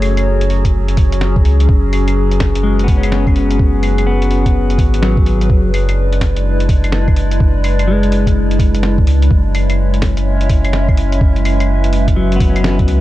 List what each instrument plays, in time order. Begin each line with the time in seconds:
Already playing: sub bass F#1, ambient pad F#3 C#4 F#4 G#4 C#5, clean electric guitar A3
0.02 open hi-hat, claves
0.17 closed hi-hat, claves
0.41 closed hi-hat
0.50 open hi-hat
0.65 kick, closed hi-hat
0.88 closed hi-hat
0.97 kick, open hi-hat
1.12 closed hi-hat
1.21 snare
1.36 kick
1.45 sub bass C#2, open hi-hat
1.60 closed hi-hat
1.69 sub bass F#1, ambient pad B4, kick
1.93 open hi-hat, claves
2.08 closed hi-hat, claves
2.31 closed hi-hat
2.40 kick, snare, open hi-hat
2.55 closed hi-hat
2.63 clean electric guitar G#3
2.79 closed hi-hat
2.84 clean electric guitar B3
2.88 kick, open hi-hat
2.98 clean electric guitar C#4
3.03 closed hi-hat, claves
3.12 snare
3.27 kick, claves
3.36 open hi-hat
3.51 closed hi-hat
3.59 sub bass F#1, kick
3.83 open hi-hat, claves
3.98 closed hi-hat, claves
4.07 clean electric guitar B3
4.22 closed hi-hat
4.31 open hi-hat
4.46 kick, closed hi-hat
4.70 closed hi-hat
4.78 sub bass G#1, kick, open hi-hat
4.94 closed hi-hat
5.02 clean electric guitar F#3, snare
5.17 kick
5.26 open hi-hat
5.41 closed hi-hat
5.50 sub bass F#1, ambient pad G#3 D4 E4 D5, kick
5.74 open hi-hat, claves
5.89 closed hi-hat, claves
6.13 closed hi-hat
6.21 kick, snare, open hi-hat
6.37 closed hi-hat
6.60 closed hi-hat
6.69 kick, open hi-hat
6.84 closed hi-hat, claves
6.92 snare
7.08 kick, claves
7.16 open hi-hat
7.31 closed hi-hat
7.40 sub bass F#1, kick
7.64 open hi-hat, claves
7.79 closed hi-hat, claves
7.88 clean electric guitar G#3
8.03 closed hi-hat
8.12 open hi-hat
8.27 kick, closed hi-hat
8.51 closed hi-hat
8.59 kick, open hi-hat
8.75 closed hi-hat
8.83 snare
8.98 kick
9.07 sub bass C#2, open hi-hat
9.22 closed hi-hat
9.30 sub bass F#1, ambient pad G#3 C#4 E4 C#5 E5, kick
9.55 open hi-hat, claves
9.70 closed hi-hat, claves
9.94 closed hi-hat
10.02 kick, snare, open hi-hat
10.17 closed hi-hat
10.41 closed hi-hat
10.49 kick, open hi-hat
10.65 closed hi-hat, claves
10.73 snare
10.89 kick, claves
10.97 open hi-hat
11.12 closed hi-hat
11.21 sub bass F#1, ambient pad B4, kick
11.36 closed hi-hat
11.45 open hi-hat, claves
11.60 closed hi-hat, claves
11.84 closed hi-hat
11.93 open hi-hat
12.08 kick, closed hi-hat
12.16 clean electric guitar F#3
12.32 clean electric guitar B3, closed hi-hat
12.40 kick, open hi-hat
12.50 clean electric guitar C#4
12.56 closed hi-hat, claves
12.64 snare
12.79 kick, closed hi-hat
12.88 sub bass C#2, open hi-hat